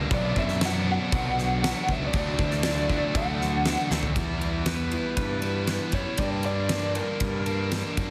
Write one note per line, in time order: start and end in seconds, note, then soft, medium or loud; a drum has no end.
0.00 0.10 D3 medium
0.00 0.11 G3 medium
0.00 0.10 A#3 medium
0.00 0.14 D4 medium
0.11 0.31 B1 loud
0.11 0.61 B2 loud
0.11 0.40 F#3 loud
0.11 0.38 B3 medium
0.11 0.36 D4 loud
0.11 0.39 D5 loud
0.11 kick loud
0.11 crash medium
0.36 0.97 F#2 loud
0.36 0.63 F#3 medium
0.36 0.63 B3 medium
0.36 0.65 D4 medium
0.36 0.62 E5 medium
0.36 kick medium
0.48 snare soft
0.61 1.11 B2 medium
0.61 0.89 F#3 medium
0.61 0.87 B3 medium
0.61 0.86 D4 medium
0.61 snare loud
0.61 crash medium
0.65 0.90 F#5 loud
0.87 1.12 F#3 medium
0.87 1.13 B3 medium
0.87 1.14 D4 medium
0.92 1.94 F#5 loud
1.12 1.72 B1 loud
1.12 1.61 B2 loud
1.12 1.62 F#3 loud
1.12 1.63 B3 loud
1.12 1.64 D4 loud
1.12 kick loud
1.12 crash medium
1.38 snare soft
1.62 2.12 B2 medium
1.62 1.89 F#3 loud
1.62 1.88 B3 medium
1.62 1.85 D4 medium
1.62 snare loud
1.62 crash medium
1.87 2.09 C#2 loud
1.87 2.13 F#3 medium
1.87 2.13 B3 medium
1.87 2.11 D4 medium
1.87 kick medium
1.92 2.03 E5 loud
2.06 2.15 D5 medium
2.13 2.34 D2 loud
2.13 2.62 D3 loud
2.13 2.40 F#3 loud
2.13 2.38 A3 loud
2.13 2.37 D4 loud
2.13 kick loud
2.13 crash medium
2.17 3.20 D5 loud
2.38 2.99 D2 medium
2.38 2.63 F#3 medium
2.38 2.64 A3 medium
2.38 2.65 D4 medium
2.38 kick loud
2.51 snare soft
2.63 3.12 D3 medium
2.63 2.90 F#3 medium
2.63 2.88 A3 medium
2.63 2.87 D4 medium
2.63 snare loud
2.63 crash medium
2.88 3.14 F#3 medium
2.88 3.15 A3 medium
2.88 3.16 D4 medium
2.88 kick medium
3.14 3.74 D2 loud
3.14 3.63 D3 loud
3.14 3.64 F#3 medium
3.14 3.65 A3 loud
3.14 3.66 D4 loud
3.14 3.88 F#5 medium
3.14 kick loud
3.14 crash medium
3.41 snare soft
3.64 4.14 D3 medium
3.64 3.91 F#3 medium
3.64 3.90 A3 medium
3.64 3.88 D4 medium
3.64 snare loud
3.64 crash medium
3.89 4.11 D2 loud
3.89 4.16 F#3 medium
3.89 4.15 A3 medium
3.89 4.14 D4 medium
3.89 snare medium
4.03 floor tom medium
4.15 4.96 E2 medium
4.15 4.64 E3 medium
4.15 4.42 G3 medium
4.15 4.40 B3 loud
4.15 4.38 E4 medium
4.15 kick loud
4.15 ride medium
4.39 4.66 G3 soft
4.39 4.66 B3 medium
4.39 4.67 E4 medium
4.39 ride medium
4.65 5.66 E3 medium
4.65 5.43 G3 medium
4.65 5.42 B3 medium
4.65 5.41 E4 medium
4.65 5.16 B4 medium
4.65 snare loud
4.65 ride medium
4.92 5.92 E4 medium
4.92 ride medium
5.17 5.78 G2 medium
5.17 6.20 G3 medium
5.17 5.96 B4 medium
5.17 kick medium
5.17 ride medium
5.42 6.20 E3 medium
5.42 5.67 G3 medium
5.42 5.68 B3 medium
5.42 5.70 E4 medium
5.42 ride medium
5.67 6.18 E3 medium
5.67 5.94 G3 medium
5.67 5.92 B3 medium
5.67 5.91 E4 medium
5.67 snare medium
5.67 ride medium
5.92 6.03 F#2 medium
5.92 6.19 G3 medium
5.92 6.18 B3 medium
5.92 6.17 E4 medium
5.92 6.19 C#5 medium
5.92 kick medium
5.92 ride medium
6.18 6.69 G2 medium
6.18 6.99 G2 medium
6.18 6.69 D3 medium
6.18 6.47 G3 medium
6.18 6.46 A#3 medium
6.18 6.26 D5 loud
6.18 kick medium
6.18 ride medium
6.22 6.45 D4 loud
6.43 6.71 A#3 medium
6.43 6.72 D4 medium
6.43 6.98 D5 medium
6.43 ride medium
6.48 6.70 G3 medium
6.69 7.72 G2 medium
6.69 7.71 D3 medium
6.69 7.48 G3 medium
6.69 7.47 A#3 medium
6.69 7.46 D4 medium
6.69 snare loud
6.69 ride loud
6.95 7.97 D4 medium
6.95 7.68 A#4 medium
6.95 ride medium
7.20 7.81 G2 medium
7.20 8.10 G3 medium
7.20 kick loud
7.20 ride loud
7.46 8.10 D3 medium
7.46 7.71 G3 medium
7.46 7.73 A#3 medium
7.46 7.74 D4 medium
7.46 ride medium
7.72 8.10 D3 medium
7.72 7.99 G3 medium
7.72 7.98 A#3 medium
7.72 7.96 D4 medium
7.72 snare medium
7.72 ride medium
7.96 8.10 F#2 medium
7.96 8.10 G3 medium
7.96 8.10 A#3 medium
7.96 8.10 D4 medium
7.96 kick medium
7.96 ride medium